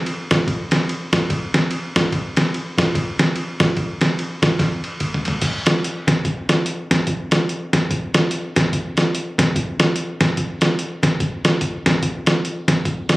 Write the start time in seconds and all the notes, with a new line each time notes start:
0.06 ride
0.31 kick, snare, ride
0.48 kick, ride
0.71 snare, ride
0.89 ride
1.13 kick, snare, ride
1.30 kick, ride
1.54 snare, ride
1.71 ride
1.96 kick, snare, ride
2.12 kick, ride
2.37 snare, ride
2.54 ride
2.78 kick, snare, ride
2.95 kick, ride
3.19 snare, ride
3.36 ride
3.60 kick, snare, ride
3.77 kick, ride
4.01 snare, ride
4.19 ride
4.42 kick, snare, ride
4.59 kick, snare, ride
4.84 ride
5.00 kick, ride
5.14 floor tom
5.25 floor tom, ride
5.42 kick, closed hi-hat, crash
5.66 snare, closed hi-hat
5.84 closed hi-hat
6.07 kick, snare, closed hi-hat
6.25 kick, closed hi-hat
6.49 snare, closed hi-hat
6.66 closed hi-hat
6.91 kick, snare, closed hi-hat
7.07 kick, closed hi-hat
7.31 snare, closed hi-hat
7.49 closed hi-hat
7.73 kick, snare, closed hi-hat
7.91 kick, closed hi-hat
8.14 snare, closed hi-hat
8.31 closed hi-hat
8.56 kick, snare, closed hi-hat
8.73 kick, closed hi-hat
8.97 snare, closed hi-hat
9.15 closed hi-hat
9.38 kick, snare, closed hi-hat
9.56 kick, closed hi-hat
9.79 snare, closed hi-hat
9.96 closed hi-hat
10.21 kick, snare, closed hi-hat
10.37 kick, closed hi-hat
10.61 snare, closed hi-hat
10.79 closed hi-hat
11.03 kick, snare, closed hi-hat
11.20 kick, closed hi-hat
11.45 snare, closed hi-hat
11.61 kick, closed hi-hat
11.86 kick, snare, closed hi-hat
12.03 kick, closed hi-hat
12.26 snare, closed hi-hat
12.45 closed hi-hat
12.68 kick, snare, closed hi-hat
12.85 kick, closed hi-hat
13.09 snare, closed hi-hat